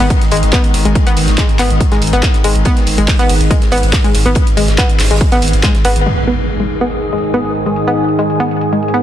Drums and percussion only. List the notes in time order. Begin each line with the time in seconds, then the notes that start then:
0.10 kick, closed hi-hat, ride
0.21 snare, closed hi-hat
0.31 open hi-hat, ride
0.37 closed hi-hat
0.43 closed hi-hat
0.53 kick, snare, clap, closed hi-hat, ride
0.64 closed hi-hat
0.74 snare, open hi-hat, ride
0.85 closed hi-hat
0.95 kick, closed hi-hat, ride
1.07 closed hi-hat
1.17 open hi-hat, ride
1.27 snare, closed hi-hat
1.38 kick, snare, clap, closed hi-hat, ride
1.49 closed hi-hat, ride
1.59 clap, open hi-hat, ride
1.70 closed hi-hat
1.80 kick, closed hi-hat, ride
1.92 snare, closed hi-hat
2.02 open hi-hat, ride
2.07 closed hi-hat
2.13 closed hi-hat
2.23 kick, snare, clap, closed hi-hat, ride
2.34 snare, closed hi-hat
2.44 open hi-hat, ride
2.56 closed hi-hat
2.65 kick, closed hi-hat, ride
2.77 snare, closed hi-hat
2.86 open hi-hat, ride
2.98 closed hi-hat
3.08 kick, snare, clap, closed hi-hat, open hi-hat
3.19 closed hi-hat
3.29 open hi-hat, ride
3.41 closed hi-hat
3.51 kick, closed hi-hat, ride
3.62 snare, closed hi-hat
3.72 snare, open hi-hat
3.78 closed hi-hat
3.83 closed hi-hat
3.92 kick, snare, clap, closed hi-hat, open hi-hat
4.04 closed hi-hat
4.14 snare, open hi-hat, ride
4.26 closed hi-hat
4.35 kick, closed hi-hat, ride
4.47 closed hi-hat
4.57 open hi-hat, ride
4.68 snare, closed hi-hat
4.78 kick, snare, clap, closed hi-hat, ride
4.89 closed hi-hat, ride
5.00 snare, clap, open hi-hat
5.05 snare, open hi-hat
5.10 snare, closed hi-hat, open hi-hat
5.16 snare, open hi-hat
5.21 kick, closed hi-hat, ride
5.32 snare, closed hi-hat
5.42 open hi-hat, ride
5.48 closed hi-hat
5.53 closed hi-hat
5.63 kick, snare, clap, closed hi-hat, ride
5.75 snare, closed hi-hat
5.85 open hi-hat, ride
5.96 closed hi-hat
6.06 closed hi-hat
6.17 closed hi-hat
6.38 closed hi-hat
6.49 closed hi-hat
6.60 closed hi-hat
6.81 closed hi-hat
6.91 closed hi-hat
7.02 closed hi-hat
7.12 closed hi-hat
7.18 closed hi-hat
7.24 closed hi-hat
7.34 closed hi-hat
7.45 closed hi-hat
7.55 closed hi-hat
7.66 closed hi-hat
7.76 closed hi-hat
7.87 closed hi-hat
8.09 closed hi-hat
8.19 closed hi-hat
8.30 closed hi-hat
8.51 closed hi-hat
8.61 closed hi-hat
8.73 closed hi-hat
8.83 closed hi-hat
8.88 closed hi-hat
8.94 closed hi-hat